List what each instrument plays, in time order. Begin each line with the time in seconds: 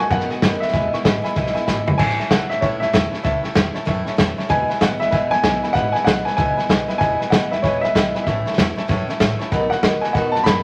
0.00 steel-string acoustic guitar A3 B3 F#4, upright piano G#5
0.10 upright bass F#2, steel-string acoustic guitar B2 D#3 A3 B3 F#4, honky-tonk piano D#5 F#5 B5, upright piano F#5, kick, snare
0.20 snare
0.30 steel-string acoustic guitar A3 B3 F#4, honky-tonk piano D#5 F#5 G#5, muted upright bass stroke, snare
0.42 upright bass F#2, steel-string acoustic guitar D#3 A3 B3 F#4, honky-tonk piano D#5 F#5 B5, kick, snare, hi-hat pedal
0.60 steel-string acoustic guitar B3 F#4, honky-tonk piano D#5 F#5 B5, upright piano E5, muted upright bass stroke, snare
0.64 steel-string acoustic guitar A3, snare
0.73 upright bass E1, steel-string acoustic guitar E2 B2 E3 G#3 B3 E4, honky-tonk piano E5 G#5 B5, kick, snare
0.92 steel-string acoustic guitar E3 G#3 B3 E4, honky-tonk piano E5 G#5 C#6, muted upright bass stroke, snare
1.04 upright bass G#1, steel-string acoustic guitar E3 G#3 B3 E4, honky-tonk piano E5 G#5 B5, kick, snare, hi-hat pedal
1.23 steel-string acoustic guitar E3 G#3 B3 E4, honky-tonk piano E5 G#5 B5, muted upright bass stroke, snare
1.35 upright bass B1, steel-string acoustic guitar E2 B2 E3 G#3 B3 E4, honky-tonk piano E5 G#5 B5, kick, snare
1.46 snare
1.53 steel-string acoustic guitar B3 E4, honky-tonk piano E5 G#5 B5, muted upright bass stroke, snare
1.57 steel-string acoustic guitar E3 G#3
1.67 upright bass G#1, steel-string acoustic guitar E3 G#3 B3 E4, honky-tonk piano E5 G#5 B5, kick, snare, hi-hat pedal
1.86 steel-string acoustic guitar E3 G#3 B3 E4, honky-tonk piano E5 G#5 B5, muted upright bass stroke, floor tom
1.98 upright bass A1, steel-string acoustic guitar A2 E3 A3 C#4 E4, honky-tonk piano C#5 E5 A5, upright piano G#5, kick, snare, crash
2.10 snare
2.19 steel-string acoustic guitar A3 C#4 E4, honky-tonk piano C#5 E5 A5, muted upright bass stroke, snare
2.31 upright bass C#2, steel-string acoustic guitar E3 A3 C#4 E4, honky-tonk piano C#5 E5 A5, upright piano F#5, kick, snare, hi-hat pedal
2.49 upright bass A1, steel-string acoustic guitar C#4 E4, honky-tonk piano C#5 E5 A5, upright piano E5, snare
2.54 steel-string acoustic guitar A3
2.61 upright bass A1, steel-string acoustic guitar A2 E3 A3 C#4 E4, upright piano C#5, honky-tonk piano C#5 E5 A5, kick, snare
2.80 upright bass E2, steel-string acoustic guitar A3 C#4 E4, honky-tonk piano C#5 E5 A5, upright piano E5, snare
2.92 upright bass E2, steel-string acoustic guitar E3 A3 C#4 E4, honky-tonk piano C#5 E5 A5, kick, snare, hi-hat pedal
3.11 steel-string acoustic guitar A3 C#4 E4, honky-tonk piano C#5 E5 A5, muted upright bass stroke, snare
3.23 upright bass C#2, steel-string acoustic guitar A2 E3 A3 C#4 E4, honky-tonk piano C#5 E5 A5, upright piano E5, kick, snare
3.42 steel-string acoustic guitar A3 C#4 E4, honky-tonk piano C#5 E5 A5, muted upright bass stroke, snare
3.54 upright bass E2, steel-string acoustic guitar E3 A3 C#4 E4, honky-tonk piano C#5 E5 F#5, kick, snare, hi-hat pedal
3.74 steel-string acoustic guitar A3 C#4 E4, honky-tonk piano C#5 E5 A5, muted upright bass stroke, snare
3.85 upright bass F#2, steel-string acoustic guitar A2 E3 A3 C#4 E4, honky-tonk piano C#5 E5 A5, kick, snare
4.05 steel-string acoustic guitar A3 C#4 E4, honky-tonk piano C#5 E5 A5, muted upright bass stroke, snare
4.17 upright bass E2, steel-string acoustic guitar E3 A3 C#4 E4, honky-tonk piano C#5 E5 A5, kick, snare, hi-hat pedal
4.37 steel-string acoustic guitar A3 C#4 E4, honky-tonk piano C#5 E5 A5, muted upright bass stroke, snare
4.49 upright bass E1, steel-string acoustic guitar E2 B2 E3 G#3 B3 E4, honky-tonk piano B4 E5 G#5, upright piano G#5, kick, snare
4.68 steel-string acoustic guitar E3 G#3 B3 E4, honky-tonk piano B4 E5 G#5, muted upright bass stroke, snare
4.79 upright bass G#1, steel-string acoustic guitar E3 G#3 B3 E4, honky-tonk piano B4 E5 G#5, upright piano F#5, kick, snare, hi-hat pedal
4.99 upright bass E1, steel-string acoustic guitar E3 G#3 B3 E4, honky-tonk piano B4 E5 G#5, upright piano E5, snare
5.11 upright bass E1, steel-string acoustic guitar E2 B2 E3 G#3 B3 E4, honky-tonk piano B4 E5 G#5, kick, snare
5.30 upright bass B1, steel-string acoustic guitar E3 G#3 B3 E4, honky-tonk piano B4 E5 G#5, upright piano G#5, snare
5.42 upright bass B1, steel-string acoustic guitar E3 G#3 B3 E4, honky-tonk piano B4 E5 G#5, kick, snare, hi-hat pedal
5.63 steel-string acoustic guitar E3 G#3 B3 E4, honky-tonk piano B4 E5 G#5, muted upright bass stroke, snare
5.73 upright bass G#1, steel-string acoustic guitar E2 B2 E3 G#3 B3 E4, honky-tonk piano B4 E5 B5, upright piano F#5, kick, snare
5.92 steel-string acoustic guitar G#3 B3 E4, honky-tonk piano B4 E5 G#5, upright piano G#5, muted upright bass stroke, snare
5.97 steel-string acoustic guitar E3
6.05 upright bass B1, steel-string acoustic guitar E3 G#3 B3, honky-tonk piano B4 E5 B5, upright piano F#5, kick, snare, hi-hat pedal
6.09 steel-string acoustic guitar E4
6.25 steel-string acoustic guitar E3 G#3 B3 E4, honky-tonk piano B4 E5 G#5, upright piano G#5, muted upright bass stroke, snare
6.37 upright bass C#2, steel-string acoustic guitar E2 B2 E3 G#3 B3 E4, honky-tonk piano B4 E5 G#5, upright piano G#5, kick, snare
6.57 steel-string acoustic guitar E3 G#3 B3 E4, honky-tonk piano B4 E5 G#5, muted upright bass stroke, snare
6.69 upright bass B1, steel-string acoustic guitar E3 G#3 B3 E4, honky-tonk piano B4 E5 G#5, kick, snare, hi-hat pedal
6.88 steel-string acoustic guitar E3 G#3 B3 E4, honky-tonk piano B4 E5 G#5, muted upright bass stroke, snare
6.98 upright bass E1, steel-string acoustic guitar E2 B2 E3 G#3 B3, honky-tonk piano B4 E5 G#5, upright piano G#5, kick, snare
7.02 steel-string acoustic guitar E4
7.21 steel-string acoustic guitar E3 G#3 B3 E4, honky-tonk piano B4 E5 G#5, muted upright bass stroke, snare
7.30 upright bass G#1, steel-string acoustic guitar E3 G#3, honky-tonk piano B4 E5 G#5, upright piano F#5, kick, snare, hi-hat pedal
7.35 steel-string acoustic guitar B3 E4
7.51 upright bass E1, steel-string acoustic guitar G#3 B3 E4, honky-tonk piano B4 E5 G#5, upright piano E5, snare
7.55 steel-string acoustic guitar E3
7.62 upright bass E1, steel-string acoustic guitar E2 B2 E3 G#3 B3 E4, honky-tonk piano B4 E5 G#5, upright piano C#5, kick, snare
7.81 upright bass B1, steel-string acoustic guitar E4, honky-tonk piano B4 E5 G#5, upright piano E5, snare
7.86 steel-string acoustic guitar E3 G#3 B3
7.94 upright bass B1, steel-string acoustic guitar E3 G#3 B3 E4, honky-tonk piano B4 E5 B5, kick, snare, hi-hat pedal
8.14 steel-string acoustic guitar E3 G#3 B3 E4, honky-tonk piano B4 E5 G#5, muted upright bass stroke, snare
8.23 upright bass A1, steel-string acoustic guitar A2 E3 A3, upright piano E5, kick, snare
8.28 steel-string acoustic guitar C#4 E4, honky-tonk piano C#5 E5 A5
8.46 steel-string acoustic guitar A3 C#4 E4, honky-tonk piano C#5 E5 A5, muted upright bass stroke, snare
8.53 steel-string acoustic guitar E3, snare
8.58 upright bass E2, steel-string acoustic guitar A3 C#4 E4, honky-tonk piano C#5 E5 A5, kick, snare, hi-hat pedal
8.77 steel-string acoustic guitar A3 C#4 E4, honky-tonk piano C#5 E5 A5, muted upright bass stroke, snare
8.88 upright bass F#2, steel-string acoustic guitar A2 E3 A3 C#4 E4, honky-tonk piano C#5 E5 A5, kick, snare
9.07 steel-string acoustic guitar A3 C#4 E4, honky-tonk piano C#5 E5 A5, muted upright bass stroke, snare
9.20 upright bass A1, steel-string acoustic guitar E3 A3 C#4 E4, honky-tonk piano C#5 E5 A5, kick, snare, hi-hat pedal
9.39 steel-string acoustic guitar A3 C#4 E4, honky-tonk piano C#5 E5 A5, muted upright bass stroke, snare
9.52 upright bass B1, steel-string acoustic guitar B2 D#3 A3 B3 F#4, honky-tonk piano D#5 F#5 B5, kick, snare
9.70 steel-string acoustic guitar A3 B3 F#4, honky-tonk piano D#5 F#5 B5, upright piano F#5, muted upright bass stroke, snare
9.83 upright bass D#2, steel-string acoustic guitar D#3 A3 B3 F#4, honky-tonk piano D#5 F#5 B5, kick, snare, hi-hat pedal
10.01 upright bass B1, steel-string acoustic guitar B3 F#4, honky-tonk piano D#5 F#5 B5, upright piano G#5, snare
10.05 steel-string acoustic guitar A3
10.13 upright bass B1, steel-string acoustic guitar B2 D#3 A3 B3 F#4, honky-tonk piano D#5 F#5 B5, upright piano F#5, kick, snare
10.32 upright bass F#2, steel-string acoustic guitar F#4, honky-tonk piano D#5 F#5 B5, upright piano A5, snare
10.36 steel-string acoustic guitar A3 B3
10.44 upright bass F#2, steel-string acoustic guitar D#3, honky-tonk piano D#5 F#5 B5, upright piano B5, kick, snare, hi-hat pedal
10.48 steel-string acoustic guitar A3 B3 F#4